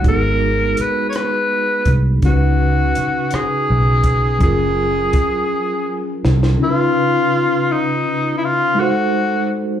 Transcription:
0.02 fingered electric bass G#1, tine electric piano G#3 D#4 F#4, kick, closed hi-hat
0.07 tine electric piano B3 G#4, tenor saxophone A#4
0.77 muted fingered electric bass stroke, closed hi-hat
0.81 tenor saxophone B4
1.09 tenor saxophone C#5, closed hi-hat
1.16 tenor saxophone B4, cross-stick
1.85 fingered electric bass C2, kick, closed hi-hat
2.21 fingered electric bass C#2, tine electric piano C#3 C#4 D#4, kick, closed hi-hat
2.25 tenor saxophone F#4, tine electric piano F#4 B4
2.95 muted fingered electric bass stroke, closed hi-hat
3.31 tenor saxophone G#4, muted fingered electric bass stroke, cross-stick, closed hi-hat
3.70 fingered electric bass B1
4.04 kick, closed hi-hat
4.39 fingered electric bass F#1, tine electric piano F#3 C#4 F4, kick, closed hi-hat
4.43 tenor saxophone G#4, tine electric piano G#4 A#4
5.13 muted fingered electric bass stroke, kick, closed hi-hat
6.25 fingered electric bass C2, snare
6.43 snare
6.57 tine electric piano C#3 C#4 D#4
6.63 tine electric piano F4 A#4, tenor saxophone F4
6.71 tine electric piano B4
7.72 tenor saxophone D#4
8.37 tenor saxophone E4
8.44 tenor saxophone F4
8.75 tine electric piano G#3 D#4 F#4
8.80 tenor saxophone F#4, tine electric piano A4 C5

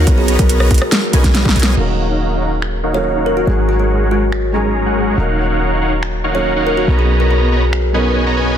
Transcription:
0.05 808-style bass B1, felt piano F#3 B3 C#4 D#4, supersaw synth B3 B4 C#5 D#5 A#5, kick, closed hi-hat
0.09 felt piano A#4
0.18 kalimba G#4
0.28 closed hi-hat
0.39 808-style bass B1, supersaw synth B3 B4 C#5 D#5 A#5, kalimba A#4, kick, closed hi-hat
0.49 kalimba A#4, closed hi-hat
0.60 cross-stick
0.71 808-style bass B1, supersaw synth B3 B4 C#5 D#5 A#5, kick, closed hi-hat
0.74 closed hi-hat
0.78 cross-stick, closed hi-hat
0.92 snare, closed hi-hat
1.11 808-style bass B1, felt piano F#3 B3 C#4 D#4, supersaw synth B3 B4 C#5 D#5 G#5, closed hi-hat
1.15 felt piano A#4
1.24 kick, snare, closed hi-hat
1.35 snare, closed hi-hat
1.45 808-style bass B1, supersaw synth B3 B4 C#5 D#5 A#5, kick, snare
1.56 808-style bass B1, supersaw synth B3 B4 C#5 D#5 G#5, closed hi-hat
1.59 snare, closed hi-hat
1.63 closed hi-hat
1.75 808-style bass D#1, felt piano F#3 A#3 C#4 D#4, supersaw synth D#4 A#4 C#5 F5 F#5, crash
1.79 felt piano A#4
2.09 supersaw synth D#4 A#4 C#5 F5 F#5
2.41 supersaw synth D#4 A#4 C#5 F5 F#5
2.62 finger snap
2.83 supersaw synth D#4 A#4 C#5 F5 F#5
2.92 felt piano F#3 A#3 C#4 D#4, kalimba C#5
2.97 felt piano A#4
3.16 supersaw synth D#4 A#4 C#5 F5 F#5
3.26 kalimba A#4
3.37 kalimba F#4
3.45 808-style bass G#1, felt piano F#3 G#3 C#4 D#4 G#4, supersaw synth G#3 G#4 A#4 C#5 F#5, kalimba F#4
3.69 kalimba F#4
3.79 supersaw synth G#3 G#4 A#4 C#5 F#5, kalimba F#4
4.11 supersaw synth G#3 G#4 A#4 C#5 F#5, kalimba F#4
4.32 finger snap
4.52 felt piano F#3 G#3 C#4 D#4, supersaw synth G#3 G#4 A#4 C#5 A#5
4.56 felt piano G#4
4.86 supersaw synth G#3 G#4 A#4 C#5 F#5
5.16 808-style bass D#1, felt piano F#3 A#3 C#4 D#4 A#4, supersaw synth D#4 A#4 C#5 F5 F#5
5.50 supersaw synth D#4 A#4 C#5 F5 F#5
5.81 supersaw synth D#4 A#4 C#5 F5 F#5
6.03 finger snap
6.24 supersaw synth D#4 A#4 C#5 F5 F#5
6.33 felt piano F#3 A#3 C#4 D#4, kalimba C#5
6.37 felt piano A#4
6.56 supersaw synth D#4 A#4 C#5 F5 F#5
6.67 kalimba A#4
6.77 kalimba F#4
6.86 808-style bass B1, felt piano F#3 B3 C#4 D#4, supersaw synth B3 B4 C#5 D#5 A#5
6.90 felt piano A#4
6.99 kalimba G#4
7.20 supersaw synth B3 B4 C#5 D#5 A#5, kalimba A#4
7.31 kalimba A#4
7.52 supersaw synth B3 B4 C#5 D#5 A#5
7.73 finger snap
7.92 felt piano F#3 B3 C#4 D#4 A#4, supersaw synth B3 B4 C#5 D#5 G#5
8.26 supersaw synth B3 B4 C#5 D#5 A#5
8.37 supersaw synth B3 B4 C#5 D#5 G#5

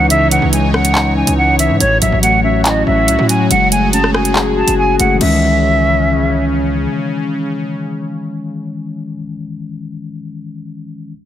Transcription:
Already playing: 808-style bass C#2, tine electric piano C#3 E3 G#3 C#4 D#4, analog synth pad E3 D#4 C#5
0.10 tine electric piano C#3, flute E5, closed hi-hat
0.31 tine electric piano E3, flute F#5, closed hi-hat
0.42 808-style bass C#2
0.53 tine electric piano G#3, flute G#5, closed hi-hat
0.74 tine electric piano C#4, flute F#5, cross-stick
0.85 closed hi-hat
0.95 tine electric piano D#4, clap
1.16 tine electric piano C#4, flute G#5
1.27 808-style bass C#2, closed hi-hat
1.38 flute F#5
1.59 tine electric piano E3, flute E5, closed hi-hat
1.70 808-style bass G#2
1.80 808-style bass A1, tine electric piano A2, analog synth pad F#3 F#4, flute C#5, closed hi-hat
2.02 808-style bass A1, tine electric piano F#3, flute E5, closed hi-hat
2.12 808-style bass A1
2.23 tine electric piano A3, flute F#5, closed hi-hat
2.44 tine electric piano C#4, flute E5
2.65 tine electric piano E4, flute D#5, clap, closed hi-hat
2.87 808-style bass A1, tine electric piano C#4, flute E5
3.08 808-style bass C2, closed hi-hat
3.19 808-style bass A2
3.29 tine electric piano F#3, flute G#5, closed hi-hat
3.51 808-style bass F#1, tine electric piano G#3, analog synth pad G#4, flute F#5, closed hi-hat
3.72 tine electric piano A3, flute G#5, closed hi-hat
3.93 tine electric piano C#4, flute A5, closed hi-hat
4.04 cross-stick
4.14 tine electric piano F#4, flute G#5, cross-stick
4.25 closed hi-hat
4.36 tine electric piano G#4, clap
4.57 tine electric piano F#4, flute A5
4.68 808-style bass F#1, closed hi-hat
4.78 flute G#5
5.00 808-style bass F#1, tine electric piano A3, flute F#5, closed hi-hat
5.15 tine electric piano E3 G#3
5.21 808-style bass C#2, analog synth pad C#3 C#4, tine electric piano C#4, flute E5, crash
5.27 tine electric piano D#3

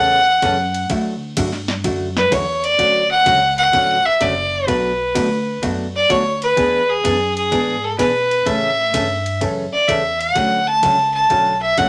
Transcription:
Already playing: upright bass E2, hollow-body jazz guitar C#3 E3 A3 C#4 A4, fiddle F#5
0.42 upright bass F#2, hollow-body jazz guitar C#3 E3 A3 C#4 A4, kick, hi-hat pedal, ride
0.74 ride
0.90 upright bass D2, hollow-body jazz guitar D3 F#3 A3 E4 F#4, kick, ride
1.37 upright bass G2, hollow-body jazz guitar D3 F#3 A3 E4 F#4, kick, hi-hat pedal, ride
1.52 snare
1.68 snare
1.84 upright bass F#2, hollow-body jazz guitar D3 F#3 A3 E4 F#4, kick, ride
2.17 fiddle B4, snare
2.31 upright bass E2, hollow-body jazz guitar D3 F#3 A3 E4 F#4, fiddle C#5, kick, hi-hat pedal, ride
2.64 fiddle D5, ride
2.78 upright bass D2, hollow-body jazz guitar D3 F#3 A3 C#4 F#4, kick, ride
3.11 fiddle F#5
3.26 upright bass C#2, hollow-body jazz guitar D3 F#3 A3 C#4 F#4, kick, hi-hat pedal, ride
3.58 fiddle F#5, ride
3.72 upright bass A1, hollow-body jazz guitar D3 F#3 A3 C#4 F#4, kick, ride
4.05 fiddle E5, muted upright bass stroke
4.21 upright bass F#1, hollow-body jazz guitar D3 F#3 A3 C#4 F#4, fiddle D5, kick, hi-hat pedal, ride
4.67 upright bass B1, hollow-body jazz guitar B2 F#3 A3 D4 F#4, fiddle B4, kick, ride
5.15 upright bass D2, hollow-body jazz guitar B2 F#3 A3 D4 F#4, kick, hi-hat pedal, ride
5.62 upright bass F#2, hollow-body jazz guitar B2 F#3 A3 D4 F#4, kick, ride
5.96 fiddle D5
6.09 upright bass D2, hollow-body jazz guitar B2 F#3 A3 D4 F#4, fiddle C#5, kick, hi-hat pedal, ride
6.42 fiddle B4, ride
6.56 upright bass E2, hollow-body jazz guitar E3 B3 D4 G#4, kick, ride
6.90 fiddle G#4
7.04 upright bass F#2, hollow-body jazz guitar E3 B3 D4 G#4, kick, hi-hat pedal, ride
7.37 fiddle G#4, ride
7.52 upright bass G#2, hollow-body jazz guitar E3 B3 D4 G#4, kick, ride
7.85 fiddle A4
7.98 upright bass B2, hollow-body jazz guitar E3 B3 D4 G#4, fiddle B4, kick, hi-hat pedal, ride
8.31 ride
8.46 upright bass A2, hollow-body jazz guitar C#3 E3 A3 C#4 A4, fiddle E5, kick, ride
8.94 upright bass G2, hollow-body jazz guitar C#3 E3 A3 C#4 A4, kick, hi-hat pedal, ride
9.26 ride
9.41 upright bass F#2, hollow-body jazz guitar C#3 E3 A3 C#4 A4, kick, ride
9.73 fiddle D5, muted upright bass stroke
9.88 upright bass E2, hollow-body jazz guitar C#3 E3 A3 C#4 A4, fiddle E5, kick, hi-hat pedal, ride
10.20 fiddle F#5, ride
10.35 upright bass D2, hollow-body jazz guitar D3 F#3 A3 C#4 F#4, kick, ride
10.67 fiddle A5
10.83 upright bass C#2, hollow-body jazz guitar D3 F#3 A3 C#4 F#4, kick, hi-hat pedal, ride
11.14 fiddle A5
11.30 upright bass B1, hollow-body jazz guitar D3 F#3 A3 C#4 F#4, kick, ride
11.62 fiddle E5
11.77 upright bass A1, hollow-body jazz guitar D3 F#3 A3 C#4 F#4, fiddle F#5, kick, hi-hat pedal, ride

